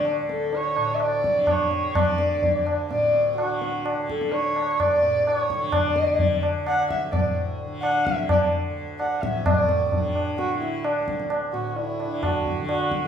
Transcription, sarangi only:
0.31 0.57 A4 medium
0.55 0.96 C#5 loud
0.94 1.04 E5 medium
1.03 1.52 D5 medium
1.51 2.00 C#5 medium
1.98 2.68 D5 medium
2.91 3.34 D5 medium
3.37 3.81 F#4 medium
4.09 4.34 A4 medium
4.32 4.82 C#5 medium
4.81 5.30 D5 loud
5.28 5.76 C#5 medium
5.74 6.44 D5 medium
6.68 6.89 F#5 loud
6.91 7.11 E5 medium
7.11 7.34 D5 medium
7.82 8.07 F#5 loud
8.05 8.29 E5 medium
8.30 8.52 D5 medium
8.99 9.23 F#5 medium
9.21 9.45 E5 medium
9.45 10.11 D5 medium
10.38 10.60 F#4 medium
10.61 10.86 E4 medium
10.85 11.31 D4 medium
11.53 11.69 F#4 medium
11.69 11.78 F#4 medium
11.77 12.25 E4 medium
12.24 12.68 F#4 medium
12.69 13.06 F#4 medium

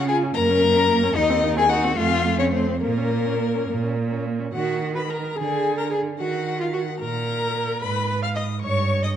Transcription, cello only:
0.00 0.26 C#3 medium
0.35 1.07 F#2 loud
1.15 1.88 D#2 loud
1.98 2.72 F2 loud
2.83 3.58 A#2 medium
3.69 4.44 A#2 medium
4.55 5.23 D#3 medium
5.38 6.05 D3 medium
6.18 6.86 D#3 medium
7.01 7.69 A#2 medium
7.82 8.50 G#2 medium
8.62 9.16 G2 medium

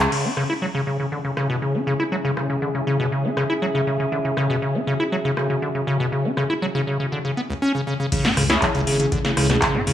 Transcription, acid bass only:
0.12 0.26 C#3 medium
0.25 0.31 C#4 loud
0.37 0.44 C#3 loud
0.50 0.54 E4 loud
0.62 0.66 F#3 loud
0.75 0.82 C#3 loud
0.87 0.97 C#3 medium
1.00 1.07 C#3 medium
1.12 1.19 D3 medium
1.25 1.32 C#3 medium
1.37 1.48 C#3 loud
1.50 1.57 B2 loud
1.62 1.76 C#3 medium
1.75 1.82 C#4 medium
1.87 1.94 C#3 loud
2.00 2.04 E4 loud
2.12 2.16 F#3 loud
2.25 2.32 C#3 loud
2.37 2.48 C#3 medium
2.50 2.57 C#3 medium
2.62 2.69 D3 medium
2.75 2.82 C#3 medium
2.87 2.98 C#3 loud
3.00 3.07 B2 loud
3.12 3.26 C#3 medium
3.25 3.32 C#4 loud
3.37 3.44 C#3 medium
3.50 3.54 E4 loud
3.62 3.66 F#3 loud
3.75 3.82 C#3 loud
3.87 3.98 C#3 medium
4.00 4.07 C#3 medium
4.12 4.19 D3 medium
4.25 4.32 C#3 medium
4.37 4.48 C#3 loud
4.50 4.57 B2 loud
4.62 4.76 C#3 medium
4.75 4.82 C#4 loud
4.87 4.94 C#3 loud
5.00 5.04 E4 loud
5.12 5.16 F#3 loud
5.25 5.32 C#3 loud
5.37 5.48 C#3 medium
5.50 5.57 C#3 medium
5.62 5.69 D3 medium
5.75 5.82 C#3 medium
5.87 5.98 C#3 loud
6.00 6.07 B2 loud
6.12 6.26 C#3 medium
6.25 6.32 C#4 loud
6.37 6.44 C#3 loud
6.50 6.54 E4 loud
6.62 6.66 F#3 loud
6.75 6.82 C#3 loud
6.87 6.98 C#3 medium
7.00 7.07 C#3 medium
7.12 7.19 D3 medium
7.25 7.32 C#3 medium
7.37 7.41 B3 medium
7.50 7.54 C#2 loud
7.62 7.73 C#4 loud
7.75 7.82 C#3 medium
7.87 7.94 C#3 medium
8.00 8.07 C#3 medium
8.12 8.26 C#3 medium
8.25 8.32 C#4 loud
8.37 8.44 C#3 loud
8.50 8.54 E4 loud
8.62 8.66 F#3 loud
8.75 8.82 C#3 loud
8.87 8.98 C#3 medium
9.00 9.07 C#3 medium
9.12 9.19 D3 medium
9.25 9.32 C#3 medium
9.37 9.48 C#3 loud
9.50 9.57 B2 loud
9.62 9.76 C#3 medium
9.75 9.82 C#4 loud
9.87 9.93 C#3 loud

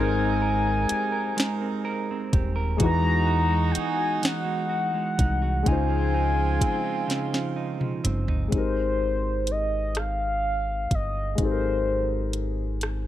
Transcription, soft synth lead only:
0.00 2.30 G#5 loud
2.82 3.73 A#5 loud
3.72 3.80 G5 medium
3.79 4.27 G#5 loud
4.26 5.69 F#5 loud
5.68 8.05 G#5 loud
8.55 9.53 C5 medium
9.51 9.99 D#5 medium
9.98 10.96 F5 loud
10.95 11.40 D#5 medium
11.43 12.79 C5 medium

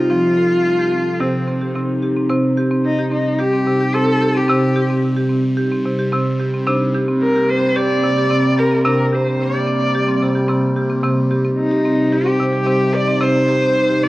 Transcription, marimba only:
0.10 0.96 F3 medium
0.10 0.38 C4 medium
0.37 0.51 A4 medium
0.52 0.79 C4 medium
0.79 0.93 G4 medium
0.92 1.20 C4 medium
1.20 1.63 C3 medium
1.20 1.48 G4 medium
1.48 1.61 C4 medium
1.61 1.75 G4 medium
1.75 2.18 C3 medium
1.75 2.03 C4 medium
2.02 2.16 G4 medium
2.16 2.28 C4 medium
2.30 3.15 C3 loud
2.30 2.57 C4 medium
2.57 2.71 G4 medium
2.71 2.98 C4 medium
2.98 3.12 G4 medium
3.11 3.39 C4 medium
3.39 3.53 G4 medium
3.53 3.81 C4 medium
3.67 3.88 C3 medium
3.81 3.94 G4 medium
3.94 4.37 C3 medium
3.94 4.21 C4 medium
4.21 4.35 G4 medium
4.35 4.47 C4 medium
4.48 5.34 C3 loud
4.48 4.76 C4 medium
4.76 4.90 G4 medium
4.90 5.17 C4 medium
5.17 5.30 G4 medium
5.30 5.57 C4 medium
5.57 5.71 G4 medium
5.72 5.99 C4 medium
5.85 6.06 C3 medium
5.99 6.12 G4 medium
6.12 6.55 C3 medium
6.12 6.40 C4 medium
6.39 6.53 G4 medium
6.54 6.67 C4 medium
6.67 7.52 C3 loud
6.67 6.94 D4 medium
6.94 7.08 G4 medium
7.08 7.35 C4 medium
7.36 7.49 G4 medium
7.49 7.76 C4 medium
7.76 7.90 G4 medium
7.90 8.17 C4 medium
8.04 8.25 C3 medium
8.17 8.31 G4 medium
8.30 8.73 C3 medium
8.30 8.58 C4 medium
8.58 8.72 G4 medium
8.71 8.85 C4 medium
8.85 9.70 C3 loud
8.85 9.13 D4 medium
9.12 9.26 G4 medium
9.26 9.54 C4 medium
9.54 9.67 G4 medium
9.67 9.94 C4 medium
9.95 10.08 G4 medium
10.08 10.35 C4 medium
10.22 10.43 C3 medium
10.35 10.49 G4 medium
10.48 10.91 C3 medium
10.48 10.76 C4 medium
10.76 10.90 G4 medium
10.90 11.02 C4 medium
11.03 11.88 C3 loud
11.03 11.31 C4 medium
11.31 11.44 G4 medium
11.45 11.72 C4 medium
11.71 11.85 G4 medium
11.85 12.12 C4 medium
12.12 12.26 G4 medium
12.26 12.53 C4 medium
12.40 12.61 C3 medium
12.53 12.66 G4 medium
12.66 13.09 C3 medium
12.66 12.94 C4 medium
12.94 13.07 G4 medium
13.08 13.20 C4 medium
13.20 14.05 C3 loud
13.20 13.48 C4 medium
13.48 13.62 G4 medium
13.62 13.89 C4 medium
13.89 14.03 G4 medium
14.03 14.08 C4 medium

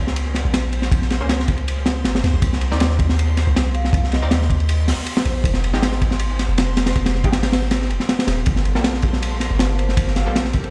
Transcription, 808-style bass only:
0.00 0.43 C#2 medium
0.45 0.90 A#1 medium
0.92 1.22 A#1 loud
1.20 2.06 C#2 medium
2.05 2.22 G#1 loud
2.24 2.33 D#2 medium
2.34 2.42 A#1 medium
2.42 2.73 C2 loud
2.71 3.45 D#2 medium
3.47 3.92 C2 loud
3.93 4.24 C2 loud
4.22 4.90 D#2 medium
4.88 4.97 C2 medium
5.26 5.43 A#1 medium
5.44 5.75 F1 loud
5.73 6.47 G#1 medium
6.49 6.94 F1 medium
6.96 7.25 F1 loud
7.24 7.91 G#1 medium
7.90 7.99 F1 medium
8.28 8.45 D#1 medium
8.47 8.77 G1 loud
8.75 9.49 A#1 medium
9.51 9.96 G1 loud
9.97 10.28 G1 loud
10.26 10.70 A#1 medium

